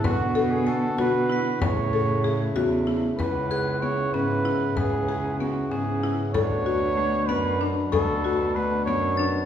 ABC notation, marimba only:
X:1
M:5/8
L:1/8
Q:1/4=95
K:C#phr
V:1 name="Marimba"
B A g F E | B A G F E | B G B, C E | B G B, C E |
A F A, B, D | A F A, B, D |]